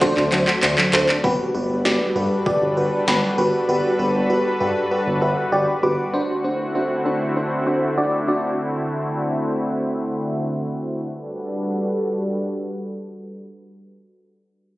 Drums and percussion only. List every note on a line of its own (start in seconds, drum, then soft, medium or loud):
0.01 kick medium
0.01 clap medium
0.01 closed hi-hat medium
0.17 clap medium
0.32 clap medium
0.32 closed hi-hat medium
0.48 clap medium
0.63 clap medium
0.63 closed hi-hat medium
0.78 clap medium
0.93 clap loud
0.93 closed hi-hat medium
1.09 clap loud
1.24 kick loud
1.85 snare loud
2.46 kick medium
3.08 snare loud